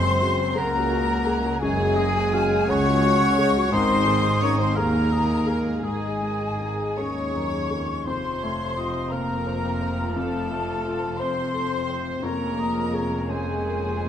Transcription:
Already playing: F#1 F#2 G#3 C4 G#4 C5 C6
0.04 F#3
0.21 C#3 F#4
0.40 F#3
0.55 C#2 G#3 A#3 G#4 A#4 F#5 A#5
0.75 F#3
0.91 C#3 F#4
1.11 F#3
1.27 G#3 G#4
1.45 F#3
1.60 F#1 F#2 C#3 G#3 G#4 C#5 G#5
1.80 F#3
1.95 G#3 D#5
2.16 F#3
2.33 C#3 F#4 F5
2.52 F#3
2.67 C#2 G#3 C#4 G#4 C#5 F#5 C#6
2.87 F#3
3.05 C#3 F#4
3.21 F#3
3.38 G#3 G#4
3.56 F#3
3.71 G#1 G#2 D#3 C4 G#4 C5 D#5 C6
3.90 G#3
4.06 D#3 G#3
4.24 G#3
4.41 D#3 C#4 D#4 C#5 C#6
4.58 G#3 C4 C5 C6
4.75 D#2 D#3 A#3 G#4 A#4 F5 A#5
4.94 G#3
5.11 D#3 D#4 D#5
5.32 G#3
5.47 D#3 G#4 F5
5.67 G#3
5.83 G#1 G#2 D#3 G#3 G#4 D#5 G#5
6.04 G#3
6.21 D#3 G#3
6.42 G#3
6.60 D#3 D#4
6.79 G#3
6.97 D#2 G#2 D#3 C#4 G#4 C#5 C#6
7.17 G#3
7.35 F#2 D#3 D#4
7.54 G#3
7.71 F2 D#3 G#4
7.91 G#3
8.06 F1 F2 C3 F3 C4 C5 C6
8.43 A3 C#5
8.77 F4 D#5
9.11 A#3 A#4 C5 F5 A#5
9.47 C5
9.81 C5
10.14 F2 A3 A4 A5
10.52 A3
10.86 F4
11.19 C4 C5 C6
11.54 A4
11.90 C5
12.23 F1 F2 G#3 A#3 C#4 A#4 C#5 A#5
12.57 A#3 D#5
12.93 G#4 C#5
13.29 G#3 C#4 G#4 C5 G#5
13.66 A#4
14.02 C#4

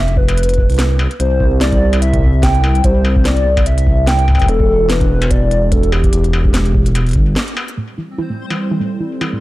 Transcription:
Already playing: F1 E5
0.08 closed hi-hat
0.17 B4, kick
0.28 closed hi-hat, struck metal
0.38 closed hi-hat
0.43 closed hi-hat
0.49 closed hi-hat
0.54 closed hi-hat
0.58 kick
0.69 C2, closed hi-hat
0.72 closed hi-hat
0.74 closed hi-hat
0.76 snare, closed hi-hat
0.79 closed hi-hat
0.99 struck metal
1.11 closed hi-hat
1.19 C2 C5, closed hi-hat
1.40 kick
1.61 D5, snare, closed hi-hat
1.72 kick, closed hi-hat
1.93 closed hi-hat, struck metal
2.02 E5, closed hi-hat
2.13 kick, closed hi-hat
2.19 kick
2.26 kick
2.43 G5, kick, snare, closed hi-hat
2.55 closed hi-hat
2.64 struck metal
2.75 closed hi-hat
2.84 C2 C5, kick, closed hi-hat
3.05 struck metal
3.16 kick
3.25 D5, snare, closed hi-hat
3.37 closed hi-hat
3.57 kick, closed hi-hat, struck metal
3.66 E5, closed hi-hat
3.78 closed hi-hat
3.87 kick
4.07 G5, snare, closed hi-hat
4.19 closed hi-hat
4.28 kick, struck metal
4.31 kick
4.34 kick, struck metal
4.37 kick
4.39 kick, closed hi-hat, struck metal
4.42 kick
4.44 kick
4.46 E1 A4, kick, closed hi-hat
4.60 kick
4.90 B4, snare, closed hi-hat
5.01 kick, closed hi-hat
5.22 closed hi-hat, struck metal
5.31 D5, kick, closed hi-hat
5.51 closed hi-hat
5.72 A4, kick, closed hi-hat
5.83 closed hi-hat
5.92 G4, struck metal
6.04 kick, closed hi-hat
6.13 E1, closed hi-hat
6.24 closed hi-hat
6.33 struck metal
6.45 kick
6.54 snare, closed hi-hat
6.66 closed hi-hat
6.75 kick
6.86 closed hi-hat
6.95 closed hi-hat, struck metal
7.07 closed hi-hat
7.09 closed hi-hat
7.11 closed hi-hat
7.13 G1, kick, closed hi-hat
7.36 snare
7.48 closed hi-hat
7.57 struck metal
7.68 closed hi-hat
7.77 G3 A3 C4 C5
7.96 C4 E4
8.05 E4
8.18 E4
8.30 A3
8.47 E4 A4, struck metal
8.71 E4
8.80 A3
9.00 E4
9.21 E4, struck metal
9.33 A3

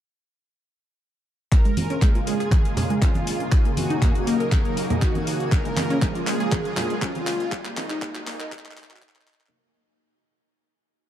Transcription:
1.52 A#1 C#3 G#3 A#3 F4 G#4 A#4 G#5, kick, clap, closed hi-hat, riser
1.65 G#3, closed hi-hat
1.77 A#1, open hi-hat, high conga
1.90 A#1 C#4, closed hi-hat
2.02 A#1 G#3, kick, clap, closed hi-hat
2.15 F4, closed hi-hat
2.27 A#1 G#3 G#4, open hi-hat
2.40 G#4, closed hi-hat
2.51 A#1, kick, clap, closed hi-hat, high conga
2.65 closed hi-hat
2.77 A#1, open hi-hat, low conga
2.90 G#3, closed hi-hat
3.02 F2 C#4 F4, kick, clap, closed hi-hat
3.14 closed hi-hat, high conga
3.27 A#1, open hi-hat
3.40 closed hi-hat
3.52 D#2 F#3 D#4, kick, clap, closed hi-hat
3.65 A#3, closed hi-hat
3.77 D#2 F#4, open hi-hat, high conga
3.90 D#2 D#4, closed hi-hat
4.02 D#2 A#3, kick, clap, closed hi-hat, low conga
4.15 F#4, closed hi-hat
4.27 D#2 A#3 A#4, open hi-hat
4.40 A#4, closed hi-hat
4.52 D#2, kick, clap, closed hi-hat, high conga
4.65 closed hi-hat
4.77 D#2, open hi-hat
4.90 A#3, closed hi-hat, low conga
5.02 A#1 D#4 F#4, kick, clap, closed hi-hat
5.15 closed hi-hat, high conga
5.27 D#2, open hi-hat
5.40 closed hi-hat
5.52 A#1 G#3 F4 A#4, kick, clap, closed hi-hat
5.65 G#3, closed hi-hat
5.77 A#1, clap, open hi-hat, high conga
5.90 A#1 C#4, closed hi-hat
6.02 A#1 G#3, kick, clap, closed hi-hat
6.15 F4, closed hi-hat
6.27 A#1 G#3 G#4, clap, open hi-hat
6.40 G#4, closed hi-hat
6.52 A#1, kick, clap, closed hi-hat, high conga
6.65 closed hi-hat
6.77 A#1, clap, open hi-hat, low conga
6.90 G#3, closed hi-hat
7.02 F2 C#4 F4, kick, clap, closed hi-hat
7.15 closed hi-hat, high conga
7.27 A#1, clap, open hi-hat
7.40 closed hi-hat
7.52 C2 C3 F#3 D#4, kick, clap, closed hi-hat
7.65 A#3, clap, closed hi-hat
7.77 C2 D#4, clap, open hi-hat, high conga
7.90 C2 D#4, clap, closed hi-hat
8.02 C2 A#3, kick, clap, closed hi-hat, low conga
8.15 F#4, clap, closed hi-hat
8.27 C2 A#3 D#4, clap, open hi-hat
8.40 A#4, clap, closed hi-hat
8.52 C2, kick, clap, closed hi-hat, high conga
8.59 clap
8.65 clap, closed hi-hat
8.71 clap
8.77 C2, clap, open hi-hat
8.84 clap
8.90 F#4, clap, closed hi-hat, low conga
8.96 clap
9.02 D#4 F#4, kick, clap, closed hi-hat
9.09 clap
9.15 C5, clap, closed hi-hat, high conga
9.21 clap
9.27 clap, open hi-hat
9.34 clap
9.40 clap, closed hi-hat
9.46 clap

